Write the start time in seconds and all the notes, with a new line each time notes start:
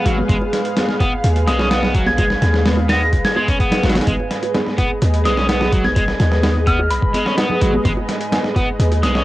Already playing: G#3 G#4 B4 F5
0.06 G#1 F#3, closed hi-hat
0.18 high bongo, high conga
0.29 G#1 G#3, kick, closed hi-hat
0.41 high bongo
0.53 snare, closed hi-hat
0.65 closed hi-hat
0.76 snare, closed hi-hat, high bongo, high conga
0.89 snare
1.00 B3, kick, closed hi-hat, high bongo
1.24 D#2, closed hi-hat
1.36 closed hi-hat, high bongo
1.47 B1 G#3 D#6, snare, closed hi-hat, high conga
1.59 C#4, snare, high bongo
1.71 B3, snare, closed hi-hat
1.83 snare, low conga
1.95 F#3, kick, closed hi-hat, high bongo
2.06 G#6, snare, high conga
2.18 G#3, kick, closed hi-hat, high bongo
2.30 snare
2.42 D#2, snare, closed hi-hat
2.54 snare, high bongo
2.66 snare, open hi-hat, high conga
2.77 high bongo
2.89 B3 A#6, snare, open hi-hat
3.13 B1, kick, closed hi-hat, high bongo
3.25 G#6, snare, open hi-hat
3.36 G#3 G#6, high bongo, high conga
3.48 C#4, kick, closed hi-hat
3.60 B3, kick, closed hi-hat
3.71 snare, closed hi-hat, high bongo, low conga
3.84 G#1 F#3, snare, closed hi-hat
3.90 snare, closed hi-hat
3.96 snare, closed hi-hat, high bongo, high conga
4.01 snare, closed hi-hat
4.07 G#1 G#3 D#5, kick, closed hi-hat
4.20 high bongo
4.31 snare, closed hi-hat
4.43 closed hi-hat, high bongo
4.54 snare, closed hi-hat, high conga
4.66 snare
4.78 B3, kick, closed hi-hat, high bongo
5.02 D#2, closed hi-hat, high bongo
5.14 closed hi-hat
5.25 B1 G#3 D#6, snare, closed hi-hat, high conga
5.37 C#4, snare, high bongo
5.49 B3, snare, closed hi-hat
5.61 snare, high bongo, low conga
5.72 F#3, kick, closed hi-hat
5.84 G#6, snare, high conga
5.96 G#3, kick, closed hi-hat, high bongo
6.08 snare
6.20 D#2, snare, closed hi-hat, high bongo
6.32 snare
6.43 snare, open hi-hat, high conga
6.56 high bongo
6.67 B3 F6, kick, closed hi-hat
6.79 high bongo
6.90 B1 B5, closed hi-hat
7.02 kick
7.14 G#3, closed hi-hat, high bongo, high conga
7.26 C#4, snare
7.38 B3, snare, closed hi-hat, high bongo
7.49 low conga
7.61 G#1 F#3, closed hi-hat
7.73 high bongo, high conga
7.85 G#1 G#3, kick, closed hi-hat
7.97 high bongo
8.09 snare, closed hi-hat
8.21 closed hi-hat
8.32 snare, closed hi-hat, high bongo, high conga
8.44 snare
8.56 B3, kick, closed hi-hat, high bongo
8.79 D#2, closed hi-hat
8.92 closed hi-hat, high bongo
9.03 B1 G#3 D#6, snare, closed hi-hat, high conga
9.15 C#4, snare, high bongo